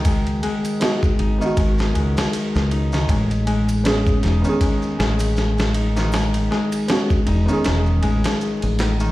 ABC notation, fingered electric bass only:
X:1
M:4/4
L:1/16
Q:"Swing 16ths" 1/4=79
K:Alyd
V:1 name="Fingered electric bass" clef=bass
C,,2 z4 G,,, z G,,,2 C,, z2 C,,3 | A,,,6 E,,, z3 A,,,6- | A,,,2 z4 E,,, z E,,,2 A,,, z2 A,,,3 |]